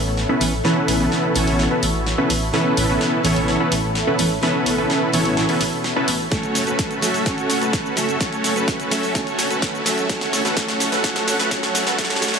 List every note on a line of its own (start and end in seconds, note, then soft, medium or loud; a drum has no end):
0.00 0.38 E3 medium
0.00 0.38 B3 medium
0.00 0.38 C#4 medium
0.00 0.39 A4 medium
0.00 10.06 A4 medium
0.00 6.28 C#5 medium
0.00 6.28 E5 medium
0.00 6.28 B5 medium
0.06 0.26 A1 medium
0.17 snare soft
0.29 0.43 B3 medium
0.29 0.43 C#4 medium
0.29 0.43 E4 medium
0.29 0.43 A4 medium
0.29 0.43 B4 loud
0.40 0.61 A1 medium
0.40 0.52 E3 medium
0.40 0.52 B3 medium
0.40 0.52 C#4 medium
0.40 0.53 B4 medium
0.40 open hi-hat loud
0.64 1.32 E3 medium
0.64 1.33 B3 medium
0.64 0.97 B3 medium
0.64 0.97 C#4 medium
0.64 1.33 C#4 medium
0.64 0.97 E4 medium
0.64 0.97 A4 medium
0.64 1.33 A4 medium
0.64 0.97 B4 loud
0.64 snare medium
0.88 1.08 A1 medium
0.88 open hi-hat loud
1.00 1.33 B3 medium
1.00 1.33 C#4 medium
1.00 1.33 E4 medium
1.00 1.33 A4 medium
1.00 1.33 B4 medium
1.12 snare soft
1.34 1.45 A1 medium
1.34 2.50 E3 medium
1.34 2.51 B3 medium
1.34 1.68 B3 medium
1.34 1.68 C#4 medium
1.34 2.51 C#4 medium
1.34 1.68 E4 medium
1.34 2.51 F#4 medium
1.34 1.68 A4 medium
1.34 1.68 C#5 medium
1.34 open hi-hat loud
1.47 1.67 A1 medium
1.47 open hi-hat medium
1.59 snare medium
1.71 1.84 B3 medium
1.71 1.84 C#4 medium
1.71 1.84 E4 medium
1.71 1.84 A4 medium
1.71 1.84 B4 medium
1.83 1.93 A1 medium
1.83 open hi-hat loud
1.95 2.14 A1 medium
2.06 snare medium
2.18 2.32 B3 medium
2.18 2.32 C#4 medium
2.18 2.32 E4 medium
2.18 2.32 A4 medium
2.18 2.32 B4 loud
2.30 2.50 A1 medium
2.30 open hi-hat loud
2.53 3.21 E3 medium
2.53 3.21 B3 medium
2.53 2.86 B3 loud
2.53 2.86 C#4 medium
2.53 3.22 C#4 medium
2.53 2.86 E4 medium
2.53 2.86 A4 medium
2.53 3.22 A4 medium
2.53 2.86 B4 loud
2.53 snare medium
2.77 2.97 A1 medium
2.77 open hi-hat loud
2.89 3.22 B3 medium
2.89 3.22 C#4 medium
2.89 3.22 E4 medium
2.89 3.22 A4 medium
2.89 3.22 B4 medium
3.01 snare medium
3.23 3.34 A1 loud
3.23 4.16 E3 medium
3.23 4.16 B3 medium
3.23 3.57 B3 medium
3.23 3.57 C#4 medium
3.23 4.16 C#4 medium
3.23 3.57 E4 medium
3.23 3.57 A4 medium
3.23 4.17 A4 medium
3.23 3.57 C#5 medium
3.23 open hi-hat loud
3.36 3.56 A1 medium
3.36 open hi-hat medium
3.48 snare medium
3.60 3.74 B3 medium
3.60 3.74 C#4 medium
3.60 3.74 E4 medium
3.60 3.73 A4 medium
3.60 3.73 B4 medium
3.72 3.82 A1 medium
3.72 open hi-hat loud
3.84 4.04 A1 medium
3.95 snare medium
4.07 4.21 B3 loud
4.07 4.21 C#4 medium
4.07 4.21 E4 medium
4.07 4.21 A4 medium
4.07 4.21 B4 loud
4.18 4.39 A1 medium
4.18 4.30 E3 medium
4.18 4.30 B3 medium
4.18 4.30 C#4 medium
4.18 4.31 B4 medium
4.18 open hi-hat loud
4.41 5.10 E3 medium
4.41 5.10 B3 medium
4.41 4.75 B3 loud
4.41 4.75 C#4 medium
4.41 5.11 C#4 medium
4.41 4.75 E4 medium
4.41 4.75 A4 medium
4.41 5.11 A4 medium
4.41 4.75 B4 loud
4.41 snare medium
4.66 4.86 A1 loud
4.66 open hi-hat loud
4.78 5.11 B3 medium
4.78 5.11 C#4 medium
4.78 5.11 E4 medium
4.78 5.11 A4 medium
4.78 5.11 B4 loud
4.90 snare medium
5.12 5.23 A1 medium
5.12 6.28 E3 medium
5.12 6.29 B3 medium
5.12 5.46 B3 medium
5.12 5.46 C#4 medium
5.12 6.29 C#4 medium
5.12 5.46 E4 medium
5.12 6.29 F#4 medium
5.12 5.46 A4 medium
5.12 5.46 C#5 medium
5.12 open hi-hat loud
5.25 5.45 A1 medium
5.25 open hi-hat medium
5.37 snare medium
5.49 5.62 B3 medium
5.49 5.62 C#4 medium
5.49 5.62 E4 medium
5.49 5.62 A4 medium
5.49 5.62 B4 medium
5.49 open hi-hat medium
5.61 5.71 A1 medium
5.61 open hi-hat loud
5.72 5.92 E1 medium
5.84 snare medium
5.96 6.10 B3 loud
5.96 6.10 C#4 medium
5.96 6.10 E4 medium
5.96 6.10 A4 medium
5.96 6.10 B4 loud
6.08 6.28 A1 loud
6.08 open hi-hat loud
6.30 6.99 F#3 medium
6.30 6.99 A3 medium
6.30 6.64 A3 medium
6.30 6.64 C#4 medium
6.30 7.00 C#4 medium
6.30 6.64 F#4 medium
6.30 6.64 A4 medium
6.30 7.00 A4 medium
6.30 10.06 C#5 medium
6.30 6.64 C#5 loud
6.30 8.19 F#5 medium
6.30 10.06 C#6 medium
6.30 kick loud
6.30 snare medium
6.30 closed hi-hat medium
6.30 riser medium
6.30 cabasa soft
6.43 closed hi-hat soft
6.43 cabasa soft
6.55 6.75 F#1 loud
6.55 snare medium
6.55 open hi-hat loud
6.55 cabasa medium
6.67 7.00 A3 medium
6.67 7.00 C#4 medium
6.67 7.00 F#4 medium
6.67 7.00 A4 medium
6.67 7.00 B4 medium
6.67 closed hi-hat soft
6.67 cabasa soft
6.79 kick loud
6.79 snare medium
6.79 closed hi-hat medium
6.79 cabasa soft
6.91 closed hi-hat soft
6.91 cabasa soft
7.01 7.12 F#1 loud
7.01 7.24 F#3 medium
7.01 7.24 A3 medium
7.01 7.24 C#4 medium
7.01 7.24 F#4 medium
7.01 7.24 A4 medium
7.01 7.25 A4 medium
7.01 7.24 E5 medium
7.01 snare medium
7.01 open hi-hat loud
7.01 cabasa medium
7.14 7.34 F#1 medium
7.14 open hi-hat medium
7.14 cabasa soft
7.25 7.94 F#3 medium
7.25 7.94 A3 medium
7.25 7.59 A3 medium
7.25 7.59 C#4 medium
7.25 7.94 C#4 medium
7.25 7.59 F#4 medium
7.25 7.59 A4 medium
7.25 7.95 A4 medium
7.25 7.59 C#5 loud
7.25 kick loud
7.25 snare medium
7.25 closed hi-hat medium
7.25 cabasa soft
7.38 closed hi-hat soft
7.38 cabasa soft
7.50 7.60 F#1 medium
7.50 snare medium
7.50 open hi-hat loud
7.50 cabasa medium
7.61 7.81 F#1 medium
7.61 7.94 A3 medium
7.61 7.94 C#4 medium
7.61 7.94 F#4 medium
7.61 7.94 A4 medium
7.61 7.94 B4 medium
7.61 closed hi-hat soft
7.61 cabasa soft
7.73 kick loud
7.73 snare medium
7.73 closed hi-hat medium
7.73 cabasa soft
7.86 cabasa soft
7.96 8.17 F#1 medium
7.96 8.18 F#3 medium
7.96 8.18 A3 medium
7.96 8.19 A3 medium
7.96 8.19 C#4 medium
7.96 8.19 F#4 medium
7.96 8.19 A4 medium
7.96 8.19 E5 medium
7.96 snare medium
7.96 open hi-hat loud
7.96 cabasa medium
8.09 closed hi-hat soft
8.09 cabasa soft
8.19 8.88 F#3 medium
8.19 8.88 A3 medium
8.19 8.53 A3 medium
8.19 8.53 C#4 medium
8.19 8.89 C#4 medium
8.19 8.53 F#4 medium
8.19 8.89 A4 medium
8.19 8.53 C#5 loud
8.19 10.08 G#5 medium
8.19 kick loud
8.19 snare medium
8.19 closed hi-hat medium
8.19 cabasa soft
8.32 closed hi-hat soft
8.32 cabasa soft
8.44 8.64 F#1 medium
8.44 snare medium
8.44 open hi-hat loud
8.44 cabasa medium
8.56 8.89 A3 medium
8.56 8.89 C#4 medium
8.56 8.89 F#4 medium
8.56 8.89 A4 medium
8.56 8.89 B4 medium
8.56 closed hi-hat soft
8.56 cabasa soft
8.68 kick loud
8.68 snare medium
8.68 closed hi-hat medium
8.68 cabasa soft
8.80 closed hi-hat soft
8.80 cabasa soft
8.90 9.01 F#1 loud
8.90 9.13 F#3 medium
8.90 9.13 A3 medium
8.90 9.13 C#4 medium
8.90 9.13 F#4 medium
8.90 9.13 A4 medium
8.90 9.14 A4 medium
8.90 9.13 E5 medium
8.90 snare medium
8.90 open hi-hat loud
8.90 cabasa medium
9.03 9.23 F#1 medium
9.03 open hi-hat medium
9.03 cabasa soft
9.14 9.83 F#3 medium
9.14 9.83 A3 medium
9.14 9.48 A3 medium
9.14 9.48 C#4 medium
9.14 9.83 C#4 medium
9.14 9.48 F#4 medium
9.14 9.84 A4 medium
9.14 9.48 C#5 loud
9.14 kick loud
9.14 snare medium
9.14 closed hi-hat medium
9.14 cabasa soft
9.27 closed hi-hat soft
9.27 cabasa soft
9.39 9.49 F#1 medium
9.39 snare medium
9.39 open hi-hat loud
9.39 cabasa medium
9.50 9.70 F#1 medium
9.50 9.83 A3 medium
9.50 9.83 C#4 medium
9.50 9.83 F#4 medium
9.50 9.83 A4 medium
9.50 9.83 B4 medium
9.50 closed hi-hat soft
9.50 cabasa soft
9.62 kick loud
9.62 snare medium
9.62 closed hi-hat medium
9.62 cabasa soft
9.75 cabasa soft
9.85 10.06 F#1 medium
9.85 10.07 F#3 medium
9.85 10.07 A3 medium
9.85 10.08 A3 medium
9.85 10.08 C#4 medium
9.85 10.08 F#4 medium
9.85 10.08 A4 medium
9.85 10.08 E5 medium
9.85 snare medium
9.85 open hi-hat loud
9.85 cabasa medium
9.98 closed hi-hat soft
9.98 cabasa soft
10.08 10.54 F#3 medium
10.08 10.55 A3 medium
10.08 10.42 A3 loud
10.08 10.55 C#4 medium
10.08 10.42 F#4 medium
10.08 12.39 A4 medium
10.08 10.42 A4 medium
10.08 10.55 A4 medium
10.08 10.42 C#5 loud
10.08 12.39 F#5 medium
10.08 kick loud
10.08 snare medium
10.08 closed hi-hat loud
10.08 cabasa soft
10.21 snare medium
10.21 closed hi-hat soft
10.21 cabasa soft
10.33 10.53 D2 loud
10.33 snare medium
10.33 open hi-hat loud
10.33 cabasa medium
10.45 10.55 A3 medium
10.45 10.55 C#4 medium
10.45 10.55 F#4 medium
10.45 10.55 A4 medium
10.45 10.55 B4 loud
10.45 snare medium
10.45 closed hi-hat soft
10.45 cabasa soft
10.55 11.01 F#3 medium
10.55 11.02 A3 medium
10.55 10.89 A3 loud
10.55 11.02 C#4 medium
10.55 10.89 A4 medium
10.55 11.03 A4 medium
10.55 kick loud
10.55 snare medium
10.55 closed hi-hat medium
10.55 cabasa soft
10.68 snare medium
10.68 closed hi-hat soft
10.68 cabasa soft
10.80 10.90 D2 loud
10.80 snare medium
10.80 open hi-hat loud
10.80 cabasa medium
10.92 11.12 D2 medium
10.92 11.02 A3 medium
10.92 11.02 C#4 medium
10.92 11.02 F#4 medium
10.92 11.02 A4 medium
10.92 11.02 B4 loud
10.92 snare medium
10.92 open hi-hat medium
10.92 cabasa soft
11.03 11.49 F#3 medium
11.03 11.49 A3 medium
11.03 11.37 A3 loud
11.03 11.37 C#4 medium
11.03 11.50 C#4 medium
11.03 11.37 F#4 medium
11.03 11.37 A4 medium
11.03 11.50 A4 medium
11.03 11.37 C#5 loud
11.03 kick loud
11.03 snare medium
11.03 closed hi-hat medium
11.03 cabasa soft
11.16 snare medium
11.16 closed hi-hat soft
11.16 cabasa soft
11.27 11.38 D2 medium
11.27 snare medium
11.27 open hi-hat loud
11.27 cabasa medium
11.39 11.59 D2 medium
11.39 11.49 A3 medium
11.39 11.49 C#4 medium
11.39 11.49 F#4 medium
11.39 11.49 A4 medium
11.39 11.49 B4 loud
11.39 snare medium
11.39 closed hi-hat soft
11.39 cabasa soft
11.50 11.96 F#3 medium
11.50 11.96 A3 medium
11.50 11.84 A3 loud
11.50 11.84 C#4 medium
11.50 11.97 C#4 medium
11.50 11.84 F#4 medium
11.50 11.84 A4 medium
11.50 11.97 A4 medium
11.50 11.84 C#5 loud
11.50 kick loud
11.50 snare loud
11.50 closed hi-hat medium
11.50 cabasa soft
11.63 snare medium
11.63 cabasa soft
11.75 11.95 D2 medium
11.75 snare loud
11.75 open hi-hat loud
11.75 cabasa medium
11.87 11.97 A3 medium
11.87 11.97 C#4 medium
11.87 11.97 F#4 medium
11.87 11.97 A4 medium
11.87 11.97 B4 loud
11.87 snare medium
11.87 closed hi-hat soft
11.87 cabasa soft
11.97 12.20 F#3 medium
11.97 12.20 A3 medium
11.97 12.20 A3 loud
11.97 12.20 C#4 medium
11.97 12.20 F#4 medium
11.97 12.20 A4 medium
11.97 12.21 A4 medium
11.97 12.20 C#5 loud
11.97 kick loud
11.97 snare loud
11.97 closed hi-hat loud
11.97 cabasa soft
12.04 snare medium
12.10 snare medium
12.10 closed hi-hat soft
12.10 cabasa soft
12.16 snare medium
12.21 12.39 D2 loud
12.21 12.39 F#3 medium
12.21 12.39 A3 medium
12.21 12.39 A3 loud
12.21 12.39 C#4 medium
12.21 12.39 F#4 medium
12.21 12.39 A4 medium
12.21 12.39 C#5 loud
12.21 snare loud
12.21 open hi-hat loud
12.21 cabasa medium
12.28 snare medium
12.34 snare medium
12.34 closed hi-hat soft
12.34 cabasa soft